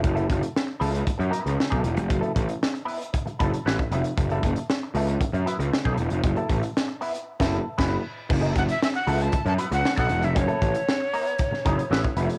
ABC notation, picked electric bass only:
X:1
M:4/4
L:1/16
Q:1/4=116
K:F#m
V:1 name="Picked electric bass" clef=bass
F,,,2 F,,, z3 C,,2 z F,, z C,, z B,,, E,,, ^E,,, | F,,, z A,,, z6 z F,,, z A,,, z ^E,,, z | F,,,2 F,,, z3 C,,2 z F,, z C,, z B,,, E,,, ^E,,, | F,,, z A,,, z6 F,,,2 z F,,,2 z2 |
F,,,2 F,,, z3 C,,2 z F,, z C,, z B,,, E,,, ^E,,, | F,,, z A,,, z6 z F,,, z A,,, z ^E,,, z |]